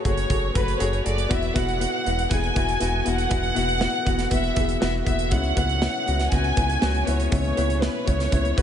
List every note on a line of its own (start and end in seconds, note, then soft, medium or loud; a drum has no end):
0.00 1.32 C#3 soft
0.00 0.04 A3 medium
0.00 0.05 F#4 medium
0.00 0.06 G#4 medium
0.00 1.32 A4 medium
0.00 0.56 B4 medium
0.04 0.26 F#1 medium
0.04 0.23 A3 medium
0.04 0.24 F#4 soft
0.04 0.24 G#4 medium
0.04 0.52 C#5 medium
0.04 kick medium
0.04 closed hi-hat soft
0.18 closed hi-hat soft
0.29 0.51 F#1 medium
0.29 0.48 A3 soft
0.29 0.49 F#4 soft
0.29 0.49 G#4 medium
0.29 kick medium
0.29 closed hi-hat medium
0.54 0.76 F#1 medium
0.54 0.73 A3 medium
0.54 0.74 F#4 medium
0.54 0.74 B4 medium
0.54 0.81 B4 medium
0.54 kick medium
0.54 closed hi-hat medium
0.68 closed hi-hat soft
0.79 1.01 F#1 medium
0.79 0.98 A3 medium
0.79 0.99 F#4 medium
0.79 0.99 G#4 medium
0.79 1.06 C#5 medium
0.79 closed hi-hat medium
0.93 closed hi-hat soft
1.04 1.26 F#1 medium
1.04 1.23 A3 medium
1.04 1.24 F#4 soft
1.04 1.24 G#4 medium
1.04 1.29 D5 medium
1.04 closed hi-hat medium
1.18 closed hi-hat soft
1.29 1.51 E1 medium
1.29 2.02 B2 soft
1.29 1.48 B3 medium
1.29 1.49 E4 medium
1.29 1.49 F#4 medium
1.29 1.57 E5 medium
1.29 kick medium
1.29 closed hi-hat medium
1.43 closed hi-hat soft
1.54 1.86 E1 medium
1.54 1.73 B3 medium
1.54 1.74 E4 medium
1.54 1.74 F#4 medium
1.54 2.32 F#5 medium
1.54 kick medium
1.54 closed hi-hat medium
1.68 closed hi-hat soft
1.79 1.99 B3 medium
1.79 1.99 E4 medium
1.79 2.00 F#4 medium
1.79 closed hi-hat medium
2.05 2.27 E1 medium
2.05 2.24 B3 medium
2.05 2.24 E4 soft
2.05 2.25 F#4 medium
2.05 closed hi-hat soft
2.19 closed hi-hat soft
2.30 2.52 E1 medium
2.30 2.49 B3 medium
2.30 2.49 E4 soft
2.30 2.50 G#4 medium
2.30 3.07 G#5 medium
2.30 kick medium
2.30 closed hi-hat medium
2.43 closed hi-hat soft
2.55 2.77 E1 loud
2.55 2.74 B3 medium
2.55 2.75 E4 medium
2.55 2.75 F#4 medium
2.55 kick medium
2.55 closed hi-hat medium
2.68 closed hi-hat soft
2.80 3.02 E1 medium
2.80 2.99 B3 medium
2.80 2.99 E4 medium
2.80 3.00 F#4 medium
2.80 closed hi-hat medium
3.05 3.27 E1 medium
3.05 3.24 B3 medium
3.05 3.25 E4 soft
3.05 3.25 F#4 medium
3.05 4.32 F#5 medium
3.05 closed hi-hat medium
3.18 closed hi-hat soft
3.29 3.52 E1 medium
3.29 4.02 B2 soft
3.29 3.49 B3 medium
3.29 3.49 E4 medium
3.29 3.50 F#4 medium
3.29 kick medium
3.29 closed hi-hat medium
3.43 closed hi-hat soft
3.55 3.87 E1 medium
3.55 3.74 B3 medium
3.55 3.75 E4 medium
3.55 3.75 F#4 medium
3.55 closed hi-hat medium
3.69 closed hi-hat soft
3.79 3.99 B3 medium
3.79 4.00 E4 medium
3.79 4.00 F#4 medium
3.79 snare medium
4.05 4.27 E1 medium
4.05 4.25 B3 medium
4.05 4.25 E4 medium
4.05 4.25 F#4 medium
4.05 kick medium
4.05 closed hi-hat soft
4.19 snare soft
4.19 closed hi-hat soft
4.31 4.52 E1 medium
4.31 4.50 B3 medium
4.31 4.50 E4 soft
4.31 4.51 F#4 medium
4.31 4.78 E5 medium
4.31 kick medium
4.31 closed hi-hat medium
4.44 closed hi-hat soft
4.55 4.77 E1 medium
4.55 4.75 B3 medium
4.55 4.75 E4 medium
4.55 4.75 G#4 medium
4.55 kick medium
4.55 closed hi-hat medium
4.69 closed hi-hat soft
4.80 5.03 E1 medium
4.80 5.00 B3 medium
4.80 5.00 E4 medium
4.80 5.01 F#4 medium
4.80 4.93 E5 medium
4.80 snare medium
5.05 5.33 E1 medium
5.05 5.25 B3 medium
5.05 5.25 E4 medium
5.05 5.26 F#4 medium
5.05 5.31 E5 medium
5.05 kick medium
5.05 closed hi-hat medium
5.19 closed hi-hat soft
5.31 5.52 C#2 medium
5.31 6.03 G#2 soft
5.31 5.50 B3 medium
5.31 5.50 C#4 medium
5.31 5.51 E4 medium
5.31 5.57 F#5 medium
5.31 kick medium
5.31 closed hi-hat medium
5.44 closed hi-hat soft
5.56 5.88 C#2 medium
5.56 5.75 B3 medium
5.56 5.76 C#4 medium
5.56 5.76 E4 medium
5.56 6.29 F#5 medium
5.56 kick medium
5.56 closed hi-hat medium
5.69 closed hi-hat soft
5.81 6.00 B3 medium
5.81 6.01 C#4 medium
5.81 6.01 E4 medium
5.81 snare medium
6.06 6.28 C#2 medium
6.06 6.25 B3 medium
6.06 6.26 C#4 medium
6.06 6.26 F#4 medium
6.06 closed hi-hat soft
6.20 snare soft
6.20 closed hi-hat soft
6.31 6.53 C#2 medium
6.31 6.50 B3 medium
6.31 6.51 C#4 medium
6.31 6.51 F#4 medium
6.31 7.08 G#5 medium
6.31 kick medium
6.31 closed hi-hat medium
6.44 closed hi-hat soft
6.56 6.78 C#2 medium
6.56 6.75 B3 medium
6.56 6.76 C#4 medium
6.56 6.76 E4 medium
6.56 kick medium
6.56 closed hi-hat medium
6.70 closed hi-hat soft
6.81 7.03 C#2 loud
6.81 7.00 B3 medium
6.81 7.01 C#4 medium
6.81 7.01 F#4 medium
6.81 snare medium
6.94 closed hi-hat soft
7.06 7.28 C#2 medium
7.06 7.25 B3 medium
7.06 7.26 C#4 medium
7.06 7.26 E4 medium
7.06 7.31 C#5 medium
7.06 closed hi-hat medium
7.20 closed hi-hat soft
7.31 7.53 C#2 medium
7.31 8.03 G#2 medium
7.31 7.50 B3 medium
7.31 7.51 C#4 medium
7.31 7.51 E4 medium
7.31 7.79 C#5 medium
7.31 kick medium
7.31 closed hi-hat medium
7.44 closed hi-hat soft
7.57 7.89 C#2 medium
7.57 7.76 B3 medium
7.57 7.76 C#4 medium
7.57 7.77 E4 medium
7.57 closed hi-hat medium
7.70 closed hi-hat soft
7.81 8.00 B3 medium
7.81 8.01 C#4 medium
7.81 8.01 E4 medium
7.81 8.07 B4 medium
7.81 snare medium
8.06 8.28 C#2 medium
8.06 8.26 B3 medium
8.06 8.26 C#4 medium
8.06 8.26 E4 medium
8.06 8.58 C#5 medium
8.06 kick medium
8.06 closed hi-hat medium
8.20 snare soft
8.20 closed hi-hat soft
8.31 8.53 C#2 medium
8.31 8.51 B3 medium
8.31 8.51 C#4 medium
8.31 8.51 E4 medium
8.31 kick medium
8.31 closed hi-hat medium
8.45 closed hi-hat soft
8.56 8.62 C#2 medium
8.56 8.62 B3 medium
8.56 8.62 C#4 medium
8.56 8.62 F#4 medium
8.56 8.62 B4 medium
8.56 kick medium
8.56 closed hi-hat medium